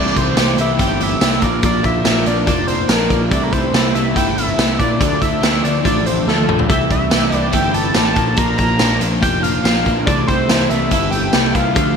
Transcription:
Already playing: C2 C3 E3 A3 E4 G4 D5
0.06 snare
0.15 C2 A3 E4 G4 C5, kick, closed hi-hat
0.36 C2 C3 E3 A3 E4 G4, snare, closed hi-hat, tambourine
0.57 C2 A3 E4 G4 E5, closed hi-hat
0.78 G1 C3 E3 A3 E4 G4 G5, kick, closed hi-hat
0.99 A3 E4 G4, closed hi-hat
1.03 E5
1.20 C2 E3 A3 E4 G4, snare, closed hi-hat, tambourine
1.41 A#1 A#2 F3 A#3 D4 D5, kick, closed hi-hat
1.62 A#1 A#2 F3 A#3 D4 D5, kick, closed hi-hat
1.81 A#1 F3 A#3 D4 E5, kick, closed hi-hat
2.03 A#1 A#2 F3 A#3 D4, snare, closed hi-hat, tambourine
2.25 A#1 F3 A#3 D4 D5, closed hi-hat
2.46 F1 A#2 F3 A#3 D4 D5, kick, closed hi-hat
2.67 F3 A#3 D4 C5, closed hi-hat
2.88 A#1 A#2 F3 A#3 D4 A#4, snare, closed hi-hat, tambourine
3.09 A#1 F3 A#3 D4, kick, closed hi-hat
3.30 C2 C3 E3 A3 E4 D5, kick, closed hi-hat
3.44 A#4
3.51 C2 E3 A3 E4 C5, kick, closed hi-hat
3.73 C2 C3 E3 A3 E4, snare, closed hi-hat, tambourine
3.93 C2 E3 A3 E4 E5, closed hi-hat
4.14 G1 C3 E3 A3 E4 G5, kick, closed hi-hat
4.35 E3 A3 E4 E5, closed hi-hat
4.56 C2 C3 E3 A3 E4, snare, closed hi-hat, tambourine
4.77 A#2 E3 A3 E4 D5, kick, closed hi-hat
4.98 D2 D3 F3 A3 D4 D5, kick, closed hi-hat
5.20 D2 F3 A3 D4 E5, kick, closed hi-hat
5.40 D2 D3 F3 A3 D4, snare, closed hi-hat, tambourine
5.62 D2 F3 A3 D4 D5, closed hi-hat
5.83 A1 D3 F3 A3 D4 D5, kick, closed hi-hat
6.04 F3 A3 D4 C5, closed hi-hat
6.26 D2 D3 F3 A3 D4 A4, snare
6.38 high tom
6.47 A#1 F3 A3 D4, mid tom
6.59 floor tom
6.68 C2 C3 E3 A3 E4 G4 E5, kick, closed hi-hat
6.89 C2 A3 E4 G4 E5, kick, closed hi-hat
7.10 C2 C3 E3 A3 E4 G4, snare, closed hi-hat, tambourine
7.30 C2 A3 E4 G4, closed hi-hat
7.36 D5
7.51 G1 C3 E3 A3 E4 G4 G5, kick, closed hi-hat
7.73 A3 E4 G4 A5, closed hi-hat
7.93 A1 E3 A3 E4 G4, snare, closed hi-hat, tambourine
8.15 A#1 A#2 F3 A#3 D4, kick, closed hi-hat
8.36 A#1 A#2 F3 A#3 D4 A#5, kick, closed hi-hat
8.57 A#1 F3 A#3 D4 A#5, kick, closed hi-hat
8.78 A#1 A#2 F3 A#3 D4, snare, closed hi-hat, tambourine
9.00 A#1 F3 A#3 D4, closed hi-hat
9.21 F1 A#2 F3 A#3 D4 G5, kick, closed hi-hat
9.41 F3 A#3 D4 F5, closed hi-hat
9.63 A#1 A#2 F3 A#3 D4 F5, snare, closed hi-hat, tambourine
9.84 A#1 F3 A#3 D4, kick, closed hi-hat
10.05 C2 C3 E3 A3 E4 D5, kick, closed hi-hat
10.27 C2 E3 A3 E4 C5, kick, closed hi-hat
10.48 C2 C3 E3 A3 E4, snare, closed hi-hat, tambourine
10.70 C2 E3 A3 E4 E5, closed hi-hat
10.90 G1 C3 E3 A3 E4, kick, closed hi-hat
11.11 A3 E4 G5, closed hi-hat
11.15 E3
11.32 C2 C3 E3 A3 E4, snare, closed hi-hat, tambourine
11.53 C2 E3 A3 E4 F5, kick, closed hi-hat
11.74 D2 D3 F3 A3 D4, kick, closed hi-hat

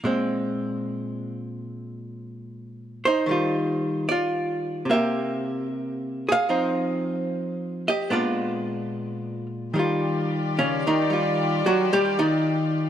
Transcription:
0.04 A#2 G#3 C4
3.05 D#4 C5
3.26 D#3 G3
3.31 F4
4.09 F4 D5
4.85 C3
4.90 A#3 G4 E5
6.29 G#4 F5
6.49 F3 C4 D#4
7.88 G4 D#5
8.10 A#2 G#3 B3 D4 F4 D5
9.73 D#3 G3 F4 G4 D5
9.79 F4
10.59 C#3 C#4
10.87 D#3 D#4
11.10 G3 F4
11.66 F#3 F#4
11.93 G3 G4
12.19 D#3 D#4

